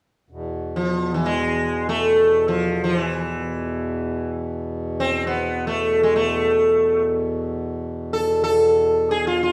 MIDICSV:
0, 0, Header, 1, 3, 480
1, 0, Start_track
1, 0, Key_signature, 4, "major"
1, 0, Tempo, 500000
1, 9140, End_track
2, 0, Start_track
2, 0, Title_t, "Sitar"
2, 0, Program_c, 0, 104
2, 731, Note_on_c, 0, 53, 64
2, 1093, Note_off_c, 0, 53, 0
2, 1097, Note_on_c, 0, 52, 61
2, 1206, Note_on_c, 0, 56, 75
2, 1223, Note_off_c, 0, 52, 0
2, 1809, Note_off_c, 0, 56, 0
2, 1813, Note_on_c, 0, 57, 80
2, 2377, Note_off_c, 0, 57, 0
2, 2381, Note_on_c, 0, 53, 68
2, 2720, Note_off_c, 0, 53, 0
2, 2724, Note_on_c, 0, 53, 60
2, 2858, Note_off_c, 0, 53, 0
2, 2858, Note_on_c, 0, 52, 60
2, 4122, Note_off_c, 0, 52, 0
2, 4799, Note_on_c, 0, 60, 81
2, 5054, Note_off_c, 0, 60, 0
2, 5058, Note_on_c, 0, 59, 69
2, 5439, Note_off_c, 0, 59, 0
2, 5443, Note_on_c, 0, 57, 69
2, 5788, Note_off_c, 0, 57, 0
2, 5792, Note_on_c, 0, 56, 67
2, 5908, Note_off_c, 0, 56, 0
2, 5911, Note_on_c, 0, 57, 69
2, 6787, Note_off_c, 0, 57, 0
2, 7806, Note_on_c, 0, 69, 78
2, 8088, Note_off_c, 0, 69, 0
2, 8099, Note_on_c, 0, 69, 86
2, 8745, Note_on_c, 0, 68, 78
2, 8762, Note_off_c, 0, 69, 0
2, 8895, Note_off_c, 0, 68, 0
2, 8900, Note_on_c, 0, 65, 76
2, 9040, Note_off_c, 0, 65, 0
2, 9051, Note_on_c, 0, 65, 60
2, 9138, Note_off_c, 0, 65, 0
2, 9140, End_track
3, 0, Start_track
3, 0, Title_t, "Harmonium"
3, 0, Program_c, 1, 20
3, 290, Note_on_c, 1, 47, 54
3, 293, Note_on_c, 1, 40, 54
3, 9140, Note_off_c, 1, 40, 0
3, 9140, Note_off_c, 1, 47, 0
3, 9140, End_track
0, 0, End_of_file